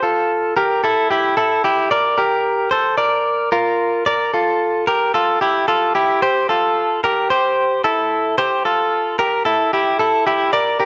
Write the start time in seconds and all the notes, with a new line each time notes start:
0.03 F4 A4
0.56 G4 A#4
0.84 E4 A4
1.10 E4 G4
1.37 E4 A4
1.64 E4 G4
1.91 A#4 D5
2.18 G4 A#4
2.71 A4 C5
2.98 A#4 D5
3.52 F4 A#4
4.06 A#4 D5
4.33 F4 A4
4.87 G4 A#4
5.14 F4 A4
5.41 E4 G4
5.68 F4 A4
5.95 E4 G4
6.22 G4 C5
6.49 F4 A4
7.04 G4 A#4
7.30 G4 C5
7.84 E4 A4
8.38 G4 C5
8.65 F4 A4
9.19 G4 A#4
9.45 E4 A4
9.73 E4 G4
9.99 E4 A4
10.26 E4 G4
10.53 A#4 D5
10.80 G4 A#4